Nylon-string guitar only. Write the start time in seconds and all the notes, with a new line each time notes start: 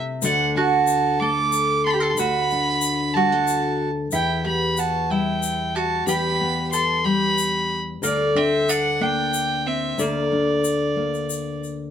Already playing: C3 G3 D4 E4
0.22 D2 D3 A3 D4 F#4
0.56 D4
1.21 A3
2.18 D2 F#4
2.52 D4
3.15 G3
3.32 A3
4.12 E2 E4
4.46 B3
5.10 G3
6.07 E2 G4
6.41 B3
7.05 G3
8.02 D2 A4
8.35 D4
9.00 A#3
9.98 D2 A4
10.32 D4
10.96 A#3